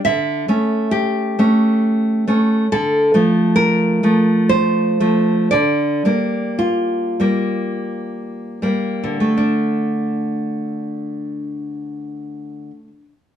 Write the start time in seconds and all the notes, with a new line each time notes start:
0.05 D3 E5
0.48 A3 C#4
0.91 G4
1.39 A3 C#4
2.28 A3 C#4
2.72 D3 A4
3.14 F3 A3
3.56 A#4
4.03 F3 A3
4.49 C5
5.00 F3 A3
5.51 D3 D5
6.05 G3 A#3
6.59 F4
7.20 G3 A#3
8.62 G3 A#3
9.04 D3
9.20 A3
9.37 D4